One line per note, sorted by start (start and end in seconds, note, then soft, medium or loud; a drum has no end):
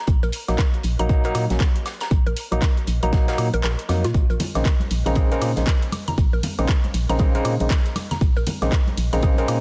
0.07 0.20 A#1 loud
0.07 kick loud
0.07 closed hi-hat medium
0.07 shaker soft
0.23 0.31 A#1 medium
0.23 0.29 A#4 medium
0.23 closed hi-hat soft
0.23 shaker soft
0.32 closed hi-hat medium
0.32 open hi-hat loud
0.32 shaker medium
0.48 0.57 A#1 medium
0.48 0.58 F#3 loud
0.48 0.58 A#3 medium
0.48 0.59 D#4 loud
0.48 snare soft
0.48 closed hi-hat medium
0.48 high woodblock medium
0.48 shaker soft
0.58 0.62 A#4 medium
0.58 kick loud
0.58 snare loud
0.58 clap loud
0.58 closed hi-hat medium
0.58 shaker soft
0.74 closed hi-hat soft
0.74 shaker soft
0.83 0.96 A#1 loud
0.83 closed hi-hat medium
0.83 open hi-hat medium
0.83 shaker medium
0.99 1.32 A#1 medium
0.99 1.08 F#3 loud
0.99 1.08 A#3 medium
0.99 1.08 D#4 loud
0.99 1.06 A#5 medium
0.99 closed hi-hat medium
0.99 shaker soft
1.09 1.22 F#3 medium
1.09 1.22 A#3 medium
1.09 1.23 D#4 medium
1.09 kick loud
1.09 closed hi-hat medium
1.09 shaker soft
1.24 1.44 F#3 loud
1.24 1.44 A#3 medium
1.24 1.44 D#4 loud
1.24 1.29 A#4 medium
1.24 closed hi-hat soft
1.24 closed hi-hat medium
1.24 shaker soft
1.35 1.47 A#2 medium
1.35 snare soft
1.35 closed hi-hat medium
1.35 open hi-hat loud
1.35 high woodblock medium
1.35 shaker medium
1.50 1.58 A#1 loud
1.50 1.60 F#3 medium
1.50 1.60 A#3 medium
1.50 1.60 C#4 medium
1.50 snare medium
1.50 closed hi-hat medium
1.50 shaker soft
1.60 1.64 A#4 medium
1.60 kick loud
1.60 snare loud
1.60 clap loud
1.60 closed hi-hat medium
1.60 shaker soft
1.76 closed hi-hat medium
1.76 shaker soft
1.86 snare loud
1.86 closed hi-hat medium
1.86 open hi-hat medium
1.86 high woodblock medium
1.86 shaker medium
2.01 2.07 A#5 medium
2.01 snare loud
2.01 closed hi-hat medium
2.01 shaker soft
2.11 2.23 A#1 medium
2.11 kick loud
2.11 closed hi-hat loud
2.11 shaker soft
2.26 2.35 A#1 medium
2.26 2.33 A#4 medium
2.26 closed hi-hat soft
2.26 shaker soft
2.37 closed hi-hat medium
2.37 open hi-hat loud
2.37 shaker medium
2.52 2.60 A#1 medium
2.52 2.62 F#3 loud
2.52 2.62 A#3 medium
2.52 2.62 D#4 loud
2.52 closed hi-hat medium
2.52 high woodblock medium
2.52 shaker soft
2.62 2.66 A#4 medium
2.62 kick loud
2.62 snare loud
2.62 clap loud
2.62 closed hi-hat loud
2.62 shaker soft
2.77 closed hi-hat soft
2.77 shaker soft
2.87 3.00 A#1 loud
2.87 closed hi-hat medium
2.87 open hi-hat medium
2.87 shaker medium
3.03 3.35 A#1 medium
3.03 3.11 F#3 loud
3.03 3.11 A#3 medium
3.03 3.11 D#4 loud
3.03 3.09 A#5 medium
3.03 closed hi-hat medium
3.03 shaker soft
3.13 3.26 F#3 medium
3.13 3.26 A#3 medium
3.13 3.26 D#4 medium
3.13 kick loud
3.13 snare loud
3.13 closed hi-hat medium
3.13 shaker soft
3.28 3.47 F#3 loud
3.28 3.47 A#3 medium
3.28 3.47 D#4 loud
3.28 3.32 A#4 medium
3.28 snare loud
3.28 closed hi-hat medium
3.28 shaker soft
3.38 3.51 A#2 loud
3.38 open hi-hat loud
3.38 high woodblock medium
3.38 shaker medium
3.54 3.62 A#1 loud
3.54 3.56 A#4 loud
3.54 closed hi-hat medium
3.54 shaker soft
3.63 3.76 A#1 medium
3.63 3.70 A#4 medium
3.63 snare loud
3.63 clap loud
3.63 closed hi-hat medium
3.63 shaker soft
3.79 closed hi-hat medium
3.79 closed hi-hat soft
3.79 shaker soft
3.89 4.06 F2 medium
3.89 4.04 F#3 medium
3.89 4.04 A#3 medium
3.89 4.04 D#4 loud
3.89 snare medium
3.89 closed hi-hat medium
3.89 open hi-hat medium
3.89 high woodblock medium
3.89 shaker medium
4.04 4.13 A#2 medium
4.04 4.09 F4 loud
4.04 snare soft
4.04 closed hi-hat medium
4.04 shaker soft
4.14 4.27 A#1 loud
4.14 kick loud
4.14 closed hi-hat loud
4.14 shaker soft
4.30 4.38 A#1 medium
4.30 4.36 A#4 medium
4.30 closed hi-hat soft
4.30 shaker soft
4.40 closed hi-hat medium
4.40 open hi-hat loud
4.40 ride medium
4.40 high conga medium
4.40 low conga loud
4.40 shaker medium
4.55 4.63 A#1 medium
4.55 4.65 C#3 medium
4.55 4.65 G#3 medium
4.55 4.65 A#3 medium
4.55 4.65 C4 medium
4.55 4.65 D#4 loud
4.55 snare soft
4.55 closed hi-hat medium
4.55 high woodblock medium
4.55 shaker soft
4.65 4.69 A#4 medium
4.65 kick loud
4.65 snare loud
4.65 clap loud
4.65 closed hi-hat medium
4.65 shaker soft
4.80 closed hi-hat soft
4.80 high conga medium
4.80 shaker soft
4.91 5.03 A#1 loud
4.91 closed hi-hat medium
4.91 open hi-hat medium
4.91 ride medium
4.91 shaker medium
5.06 5.38 A#1 medium
5.06 5.15 C#3 loud
5.06 5.15 G#3 medium
5.06 5.15 A#3 medium
5.06 5.15 C4 medium
5.06 5.15 D#4 loud
5.06 5.12 A#5 medium
5.06 closed hi-hat medium
5.06 shaker soft
5.15 5.29 A#3 medium
5.15 5.29 C4 medium
5.15 5.29 D#4 medium
5.15 5.22 G#4 loud
5.15 kick loud
5.15 closed hi-hat medium
5.15 high conga medium
5.15 shaker soft
5.31 5.50 C#3 loud
5.31 5.50 G#3 medium
5.31 5.50 A#3 medium
5.31 5.51 C4 medium
5.31 5.51 D#4 loud
5.31 5.36 A#4 medium
5.31 closed hi-hat medium
5.31 closed hi-hat soft
5.31 shaker soft
5.41 5.54 A#2 loud
5.41 snare soft
5.41 closed hi-hat medium
5.41 open hi-hat loud
5.41 ride medium
5.41 high woodblock medium
5.41 shaker medium
5.56 5.65 A#1 loud
5.56 5.67 C#3 medium
5.56 5.67 G#3 medium
5.56 5.67 A#3 medium
5.56 5.67 C4 medium
5.56 5.67 D#4 medium
5.56 snare medium
5.56 closed hi-hat medium
5.56 high conga medium
5.56 shaker soft
5.67 5.71 A#4 medium
5.67 kick loud
5.67 snare loud
5.67 clap loud
5.67 closed hi-hat loud
5.67 shaker soft
5.82 closed hi-hat medium
5.82 shaker soft
5.92 closed hi-hat medium
5.92 open hi-hat medium
5.92 ride medium
5.92 high conga loud
5.92 high woodblock medium
5.92 shaker medium
6.08 6.14 A#5 medium
6.08 closed hi-hat medium
6.08 low conga medium
6.08 shaker soft
6.18 6.30 A#1 loud
6.18 kick loud
6.18 closed hi-hat medium
6.18 shaker soft
6.33 6.41 A#1 medium
6.33 6.39 A#4 medium
6.33 shaker soft
6.43 closed hi-hat medium
6.43 open hi-hat loud
6.43 ride medium
6.43 high conga loud
6.43 low conga loud
6.43 shaker medium
6.58 6.67 A#1 medium
6.58 6.68 C#3 loud
6.58 6.68 G#3 medium
6.58 6.69 A#3 medium
6.58 6.69 C4 medium
6.58 6.69 D#4 loud
6.58 closed hi-hat medium
6.58 high woodblock medium
6.58 shaker soft
6.68 6.73 A#4 medium
6.68 kick loud
6.68 snare loud
6.68 clap loud
6.68 closed hi-hat medium
6.68 shaker soft
6.84 closed hi-hat soft
6.84 high conga medium
6.84 shaker soft
6.94 7.06 A#1 loud
6.94 closed hi-hat medium
6.94 open hi-hat loud
6.94 ride medium
6.94 shaker medium
7.09 7.42 A#1 medium
7.09 7.18 C#3 loud
7.09 7.18 G#3 medium
7.09 7.18 A#3 medium
7.09 7.18 C4 medium
7.09 7.18 D#4 loud
7.09 7.16 A#5 medium
7.09 closed hi-hat medium
7.09 shaker soft
7.19 7.33 C#3 medium
7.19 7.33 G#3 medium
7.19 7.33 A#3 medium
7.19 7.33 C4 medium
7.19 7.33 D#4 medium
7.19 7.26 G#4 loud
7.19 kick loud
7.19 closed hi-hat medium
7.19 high conga medium
7.19 shaker soft
7.35 7.54 C#3 loud
7.35 7.54 G#3 medium
7.35 7.54 A#3 medium
7.35 7.54 C4 medium
7.35 7.54 D#4 loud
7.35 7.39 A#4 medium
7.35 closed hi-hat medium
7.35 closed hi-hat soft
7.35 shaker soft
7.45 7.57 A#2 medium
7.45 closed hi-hat medium
7.45 open hi-hat loud
7.45 ride medium
7.45 high woodblock medium
7.45 shaker medium
7.60 7.68 A#1 loud
7.60 7.70 C#3 medium
7.60 7.70 G#3 medium
7.60 7.70 A#3 medium
7.60 7.70 C4 medium
7.60 7.70 D#4 medium
7.60 closed hi-hat medium
7.60 high conga medium
7.60 shaker soft
7.70 7.74 A#4 medium
7.70 kick loud
7.70 snare loud
7.70 clap loud
7.70 closed hi-hat medium
7.70 shaker soft
7.86 closed hi-hat medium
7.86 closed hi-hat soft
7.86 shaker soft
7.96 snare medium
7.96 closed hi-hat medium
7.96 open hi-hat loud
7.96 ride medium
7.96 high conga medium
7.96 high woodblock medium
7.96 shaker medium
8.11 8.17 A#5 medium
8.11 snare soft
8.11 closed hi-hat medium
8.11 low conga medium
8.11 shaker soft
8.21 8.34 A#1 loud
8.21 kick loud
8.21 closed hi-hat medium
8.21 shaker soft
8.37 8.45 A#1 medium
8.37 8.43 A#4 medium
8.37 closed hi-hat soft
8.37 shaker soft
8.47 closed hi-hat medium
8.47 open hi-hat loud
8.47 ride medium
8.47 high conga loud
8.47 low conga loud
8.47 shaker medium
8.62 8.70 A#1 medium
8.62 8.72 C#3 medium
8.62 8.72 G#3 medium
8.62 8.72 A#3 medium
8.62 8.72 C4 medium
8.62 8.72 D#4 loud
8.62 snare soft
8.62 closed hi-hat medium
8.62 high woodblock medium
8.62 shaker soft
8.72 8.76 A#4 medium
8.72 kick loud
8.72 snare loud
8.72 clap loud
8.72 closed hi-hat loud
8.72 shaker soft
8.87 closed hi-hat soft
8.87 high conga medium
8.87 shaker soft
8.98 9.10 A#1 loud
8.98 closed hi-hat medium
8.98 open hi-hat loud
8.98 ride medium
8.98 shaker medium
9.13 9.45 A#1 medium
9.13 9.21 C#3 loud
9.13 9.21 G#3 medium
9.13 9.21 A#3 medium
9.13 9.22 C4 medium
9.13 9.22 D#4 loud
9.13 9.19 A#5 medium
9.13 closed hi-hat medium
9.13 shaker soft
9.23 9.36 C#3 medium
9.23 9.36 G#3 medium
9.23 9.36 A#3 medium
9.23 9.36 C4 medium
9.23 9.36 D#4 medium
9.23 9.29 G#4 loud
9.23 kick loud
9.23 closed hi-hat loud
9.23 high conga loud
9.23 shaker soft
9.38 9.57 C#3 loud
9.38 9.57 G#3 medium
9.38 9.57 A#3 medium
9.38 9.57 C4 medium
9.38 9.57 D#4 loud
9.38 9.42 A#4 medium
9.38 closed hi-hat soft
9.38 closed hi-hat medium
9.38 shaker soft
9.48 9.61 A#2 loud
9.48 snare soft
9.48 closed hi-hat medium
9.48 open hi-hat loud
9.48 ride medium
9.48 high woodblock medium
9.48 shaker medium